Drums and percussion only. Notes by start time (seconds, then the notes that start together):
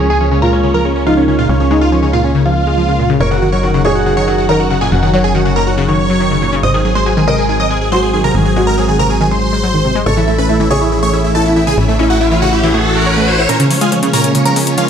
13.49 closed hi-hat
13.60 closed hi-hat
13.71 open hi-hat
13.81 closed hi-hat
13.92 closed hi-hat
14.03 closed hi-hat
14.13 open hi-hat
14.24 closed hi-hat
14.35 closed hi-hat
14.46 closed hi-hat
14.56 open hi-hat
14.67 closed hi-hat
14.78 closed hi-hat